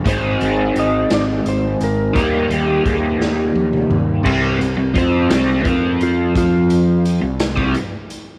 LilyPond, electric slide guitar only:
\new Staff \with { instrumentName = "Electric slide guitar" } { \time 6/8 \key c \minor \tempo 4. = 57 c''4 ees''8 d''8 c''8 bes'8~ | bes'8 g'8 aes'8 g'4 r8 | r4 c''4 bes'8 f'8 | f'4 r2 | }